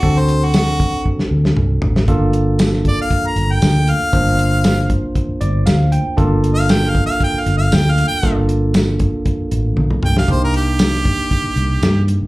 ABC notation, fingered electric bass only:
X:1
M:4/4
L:1/16
Q:1/4=117
K:Gm
V:1 name="Fingered electric bass" clef=bass
D,,8 z2 D,,2 C,,2 A,,,2 | G,,,8 z2 G,,,2 D,,3 z | G,,,8 z2 G,,,2 D,,3 z | G,,,8 z2 G,,,2 D,,3 z |
G,,,8 z2 A,,,2 B,,,2 C,,2 | C,,8 z2 C,,2 G,,3 z |]